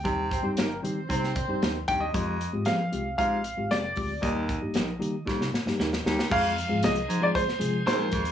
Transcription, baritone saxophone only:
\new Staff \with { instrumentName = "Baritone saxophone" } { \clef bass \time 4/4 \key f \dorian \tempo 4 = 115 c8. r4 r16 c8 r4 g,8 | f,8. r4 r16 aes,8 r4. | ees,8. r4 r16 f,8 r4 ees,8 | f,8 r4 aes,8 r4 ees,8 f,8 | }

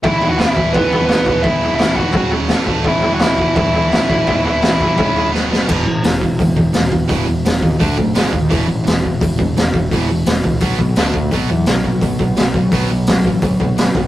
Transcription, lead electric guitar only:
\new Staff \with { instrumentName = "Lead electric guitar" } { \time 4/4 \key e \major \tempo 4 = 170 <e' e''>8. <fis' fis''>16 <e' e''>4 <b b'>4 <b b'>4 | <e' e''>4 <e' e''>8 <fis' fis''>4 r4. | <e' e''>8. <fis' fis''>16 <e' e''>4 <e' e''>2~ | <e' e''>2. r4 |
r1 | r1 | r1 | r1 |
r1 | r1 | }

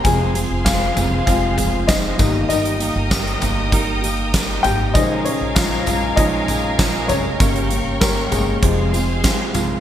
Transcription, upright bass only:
\new Staff \with { instrumentName = "Upright bass" } { \clef bass \time 4/4 \key f \minor \tempo 4 = 98 f,,8. f,,8. f,,8 f,,4. g,,8 | g,,8. g,,8. g,,2 aes,,8 | bes,,8. bes,,8. bes,,8 bes,,4. f,,8 | g,,8. g,,8. g,,8 f,,4 r8 c,8 | }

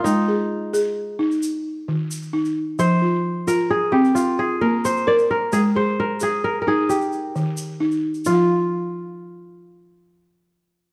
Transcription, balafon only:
\new Staff \with { instrumentName = "Balafon" } { \time 12/8 \key aes \major \tempo 4. = 88 << { r8 aes'4. r1 | r8 f'4. r1 | r8 aes'4. r1 | <f f' f''>1. | } \\ { aes4 r8 aes'4 ees'8 r4 ees4 ees'4 | f4 r8 f'4 c'8 r4 bes4 bes'4 | aes4 r8 aes'4 ees'8 r4 ees4 ees'4 | r1. | } >> }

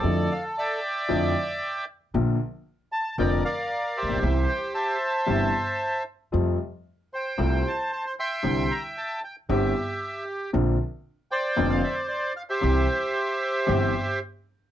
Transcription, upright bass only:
\new Staff \with { instrumentName = "Upright bass" } { \clef bass \time 4/4 \key c \mixolydian \tempo 4 = 114 f,16. r4. r32 f,16. r4. r32 | bes,,16. r4. r32 f,,16. r4 r16 a,,32 bes,,32 b,,32 | c,16. r4. r32 g,,16. r4. r32 | f,16. r4. r32 c,16. r4. r32 |
c,16. r4. r32 g,,16. r4. r32 | bes,,16. r4. r32 f,,16. r4. r32 | c,16. r4. r32 g,,16. r4. r32 | }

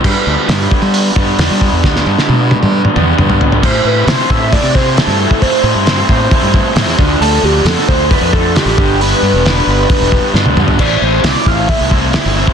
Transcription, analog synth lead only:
\new Staff \with { instrumentName = "Analog synth lead" } { \time 4/4 \key a \minor \tempo 4 = 134 r1 | r1 | c''8 b'8 c''8 e''8 d''8 c''8 a'4 | c''4 c''2 r4 |
a'8 g'8 a'8 c''8 b'8 a'8 g'4 | b'4 b'2 r4 | d''8 c''8 d''8 f''8 e''8 r4. | }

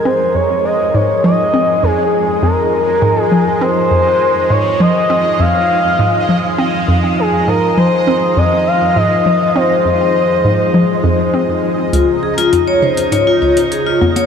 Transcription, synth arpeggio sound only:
\new Staff \with { instrumentName = "Synth arpeggio sound" } { \clef bass \time 4/4 \key f \minor \tempo 4 = 101 c'8 f,8 r8 aes,8 f8 c'8 f,8 r8 | f,8 r8 aes,8 f8 c'8 f,8 r8 aes,8 | f8 c'8 f,8 r8 aes,8 f8 c'8 f,8 | r8 aes,8 f8 c'8 f,8 r8 aes,8 f8 |
c'8 f,8 r8 aes,8 f8 f,8 c'8 r8 | des,8 r8 f,8 des8 aes,8 des,8 r8 f,8 | }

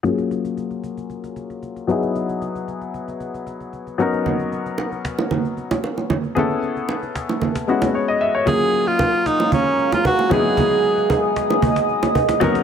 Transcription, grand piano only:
\new Staff \with { instrumentName = "Grand piano" } { \time 4/4 \key fis \major \tempo 4 = 114 << { r1 | r1 | r1 | r2. cis''16 dis''16 e''16 cis''16~ |
cis''16 r2. r8. | r1 | } \\ { <fis ais cis' eis' gis'>2.~ <fis ais cis' eis' gis'>8 <fis b dis' e' gis'>8~ | <fis b dis' e' gis'>2.~ <fis b dis' e' gis'>8 <fis b cis' dis' ais'>8~ | <fis b cis' dis' ais'>2.~ <fis b cis' dis' ais'>8 r8 | <b cis' e' gis' a'>2~ <b cis' e' gis' a'>8 <gis b cis' e' fis'>4. |
<fis ais cis' eis' gis'>2.~ <fis ais cis' eis' gis'>8 <fis b dis' e' gis'>8~ | <fis b dis' e' gis'>2.~ <fis b dis' e' gis'>8 <fis b cis' dis' ais'>8 | } >> }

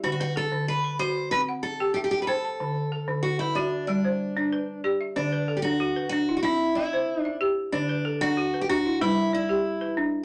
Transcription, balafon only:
\new Staff \with { instrumentName = "Balafon" } { \time 4/4 \key d \mixolydian \tempo 4 = 94 << { <d'' e''>16 b'16 a'8. b''8. r16 fis''8 g''16 e''8 g''16 a''16~ | a''16 r16 a'8. b'8. r16 c''8 d''16 b'8 d''16 e''16~ | e''16 b'16 a'8 fis'16 b'8 e'16 e''8 g''8. e''8. | r16 b'16 a'8 fis'16 b'8 e'16 b'8 d''8. b'8. | } \\ { d8 r16 d8 r16 fis'8 c'8 r16 g'8 r16 c''8 | d8 r16 d8 r16 fis'8 g8 r16 d'8 r16 g'8 | d8 r16 d'8 r16 d'8 c'8 r16 c''8 r16 g'8 | d8 r16 d'8 r16 d'8 g8 r16 g'8 r16 d'8 | } >> }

